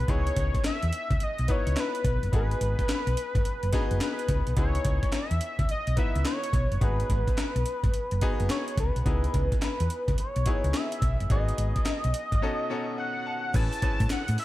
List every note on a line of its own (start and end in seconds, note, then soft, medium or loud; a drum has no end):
0.00 0.09 D#4 medium
0.00 0.10 F#4 medium
0.00 0.09 G#4 loud
0.00 0.12 B4 medium
0.08 0.29 C#2 loud
0.08 0.84 B3 medium
0.08 0.84 D#4 medium
0.08 0.85 E4 medium
0.08 0.85 G#4 medium
0.08 0.65 C#5 loud
0.08 kick loud
0.08 closed hi-hat medium
0.27 closed hi-hat soft
0.36 0.50 C#2 loud
0.36 kick medium
0.36 closed hi-hat medium
0.54 kick medium
0.54 closed hi-hat soft
0.64 1.25 E5 loud
0.64 snare loud
0.64 clap medium
0.64 closed hi-hat medium
0.83 0.90 E2 medium
0.83 closed hi-hat medium
0.93 closed hi-hat medium
1.11 1.18 C#2 medium
1.11 kick loud
1.11 closed hi-hat soft
1.20 1.53 D#5 loud
1.20 muted fingered electric bass stroke soft
1.20 closed hi-hat medium
1.38 1.46 B1 medium
1.38 closed hi-hat soft
1.48 2.03 B3 medium
1.48 2.04 D#4 medium
1.48 2.04 E4 medium
1.48 2.04 B4 medium
1.48 1.81 C#5 medium
1.48 kick medium
1.48 closed hi-hat medium
1.67 1.74 C#2 medium
1.67 closed hi-hat soft
1.76 2.34 B4 loud
1.76 snare loud
1.76 clap medium
1.76 closed hi-hat medium
1.95 closed hi-hat medium
2.04 2.18 B1 medium
2.04 kick loud
2.04 closed hi-hat medium
2.23 2.30 F#1 medium
2.23 closed hi-hat soft
2.32 2.53 G#1 loud
2.32 3.09 B3 medium
2.32 3.09 D#4 medium
2.32 3.09 F#4 medium
2.32 3.09 G#4 medium
2.32 3.98 B4 loud
2.32 kick loud
2.32 closed hi-hat medium
2.51 closed hi-hat soft
2.61 2.74 G#1 loud
2.61 closed hi-hat medium
2.79 kick medium
2.79 closed hi-hat soft
2.89 snare loud
2.89 clap medium
2.89 closed hi-hat medium
3.07 3.14 B1 medium
3.07 closed hi-hat medium
3.17 closed hi-hat medium
3.35 3.42 G#1 medium
3.35 kick loud
3.35 closed hi-hat medium
3.45 closed hi-hat medium
3.63 3.70 F#1 medium
3.63 closed hi-hat soft
3.72 4.28 B3 medium
3.72 4.28 D#4 medium
3.72 4.28 F#4 medium
3.72 4.28 G#4 medium
3.72 kick medium
3.72 snare medium
3.72 closed hi-hat medium
3.91 3.98 F#1 medium
3.91 closed hi-hat soft
4.01 4.54 B4 loud
4.01 snare loud
4.01 clap medium
4.01 closed hi-hat medium
4.19 closed hi-hat soft
4.29 4.42 C#2 loud
4.29 kick loud
4.29 closed hi-hat medium
4.47 4.54 B1 medium
4.47 closed hi-hat soft
4.57 4.77 C#2 loud
4.57 5.33 B3 medium
4.57 5.33 D#4 medium
4.57 5.33 E4 medium
4.57 5.33 G#4 medium
4.57 5.17 C#5 loud
4.57 kick loud
4.57 closed hi-hat medium
4.75 closed hi-hat medium
4.85 4.98 C#2 loud
4.85 kick medium
4.85 closed hi-hat medium
5.03 kick medium
5.03 closed hi-hat medium
5.12 5.70 E5 loud
5.12 snare loud
5.12 clap medium
5.12 closed hi-hat medium
5.31 5.38 E2 medium
5.31 closed hi-hat medium
5.41 closed hi-hat medium
5.59 5.66 C#2 medium
5.59 kick loud
5.59 closed hi-hat medium
5.69 5.96 D#5 loud
5.69 muted fingered electric bass stroke soft
5.69 closed hi-hat medium
5.87 5.94 B1 medium
5.87 closed hi-hat soft
5.96 6.52 B3 medium
5.96 6.52 D#4 medium
5.96 6.52 E4 medium
5.96 6.52 B4 medium
5.96 6.24 E5 medium
5.96 kick loud
5.96 closed hi-hat medium
6.16 6.23 C#2 medium
6.16 closed hi-hat soft
6.25 6.85 C#5 loud
6.25 snare loud
6.25 clap medium
6.25 closed hi-hat medium
6.44 closed hi-hat medium
6.53 6.66 B1 medium
6.53 kick loud
6.53 closed hi-hat medium
6.72 6.79 F#1 medium
6.72 closed hi-hat soft
6.81 7.02 G#1 loud
6.81 7.57 B3 medium
6.81 7.57 D#4 medium
6.81 7.57 F#4 medium
6.81 7.58 G#4 medium
6.81 8.50 B4 loud
6.81 kick loud
6.81 closed hi-hat medium
7.00 closed hi-hat soft
7.10 7.23 G#1 loud
7.10 kick medium
7.10 closed hi-hat medium
7.28 kick medium
7.28 closed hi-hat medium
7.38 snare loud
7.38 clap loud
7.38 closed hi-hat medium
7.56 7.63 B1 medium
7.56 closed hi-hat medium
7.66 closed hi-hat medium
7.84 7.91 G#1 medium
7.84 kick loud
7.84 closed hi-hat medium
7.94 muted fingered electric bass stroke soft
7.94 closed hi-hat medium
8.11 8.19 F#1 medium
8.11 closed hi-hat soft
8.21 8.77 B3 medium
8.21 8.77 D#4 medium
8.21 8.77 F#4 medium
8.21 8.77 G#4 loud
8.21 kick medium
8.21 closed hi-hat medium
8.40 8.47 F#1 medium
8.40 closed hi-hat soft
8.50 8.76 C#5 medium
8.50 snare loud
8.50 clap medium
8.50 closed hi-hat medium
8.68 closed hi-hat medium
8.77 8.91 C#2 loud
8.77 9.59 B4 medium
8.77 kick loud
8.77 closed hi-hat medium
8.96 9.03 B1 medium
8.96 closed hi-hat soft
9.05 9.26 C#2 loud
9.05 9.82 B3 medium
9.05 9.82 D#4 medium
9.05 9.82 E4 medium
9.05 9.82 G#4 medium
9.05 kick loud
9.05 closed hi-hat medium
9.24 closed hi-hat soft
9.34 9.47 C#2 loud
9.34 kick medium
9.34 closed hi-hat medium
9.52 kick medium
9.52 closed hi-hat medium
9.62 10.15 B4 medium
9.62 snare loud
9.62 clap medium
9.62 closed hi-hat medium
9.80 9.87 E2 medium
9.80 closed hi-hat medium
9.90 closed hi-hat medium
10.08 10.15 C#2 medium
10.08 kick medium
10.08 closed hi-hat medium
10.18 10.78 C#5 medium
10.18 muted fingered electric bass stroke soft
10.18 closed hi-hat medium
10.36 10.43 B1 medium
10.36 closed hi-hat soft
10.46 11.01 B3 medium
10.46 11.01 D#4 medium
10.46 11.01 E4 medium
10.46 11.01 G#4 medium
10.46 kick medium
10.46 closed hi-hat medium
10.64 10.71 C#2 medium
10.64 closed hi-hat soft
10.74 11.31 E5 loud
10.74 snare loud
10.74 clap medium
10.74 closed hi-hat medium
10.92 closed hi-hat medium
11.02 11.15 B1 loud
11.02 kick medium
11.02 closed hi-hat medium
11.20 11.27 F#1 medium
11.20 closed hi-hat soft
11.30 11.50 G#1 loud
11.30 11.38 A#3 medium
11.30 12.06 D#4 medium
11.30 12.06 F#4 medium
11.30 12.07 G#4 medium
11.30 12.95 D#5 loud
11.30 kick loud
11.30 closed hi-hat medium
11.37 12.09 B3 medium
11.48 closed hi-hat medium
11.58 11.71 G#1 medium
11.58 closed hi-hat medium
11.76 kick medium
11.76 closed hi-hat soft
11.86 snare loud
11.86 clap medium
11.86 closed hi-hat medium
12.04 12.12 B1 medium
12.04 closed hi-hat medium
12.14 closed hi-hat medium
12.32 12.39 G#1 medium
12.32 kick medium
12.32 closed hi-hat medium
12.42 12.66 B2 medium
12.42 12.66 C#4 medium
12.42 12.66 D#4 medium
12.42 12.67 F#4 medium
12.42 12.67 A4 loud
12.70 13.25 B2 medium
12.70 13.25 C#4 medium
12.70 13.25 D#4 medium
12.70 13.25 F#4 medium
12.70 13.26 A4 loud
12.98 13.24 F#5 medium
12.98 13.57 F#5 loud
13.27 13.52 A5 medium
13.54 13.67 A1 loud
13.54 13.75 C#4 medium
13.54 13.75 E4 medium
13.54 13.75 G#4 medium
13.54 13.76 B4 medium
13.54 14.12 A5 loud
13.54 kick loud
13.54 closed hi-hat medium
13.54 crash medium
13.54 shaker medium
13.73 closed hi-hat soft
13.73 shaker soft
13.82 14.45 C#4 medium
13.82 14.45 E4 medium
13.82 14.45 G#4 medium
13.82 14.45 B4 medium
13.82 muted fingered electric bass stroke soft
13.82 kick medium
13.82 closed hi-hat medium
14.00 14.07 A2 medium
14.00 kick medium
14.00 closed hi-hat medium
14.00 shaker soft
14.09 14.39 F#5 loud
14.09 muted fingered electric bass stroke soft
14.09 snare loud
14.09 clap medium
14.09 closed hi-hat medium
14.09 shaker medium
14.28 14.36 A2 medium
14.28 closed hi-hat medium
14.28 shaker soft
14.38 14.45 E5 medium
14.38 open hi-hat medium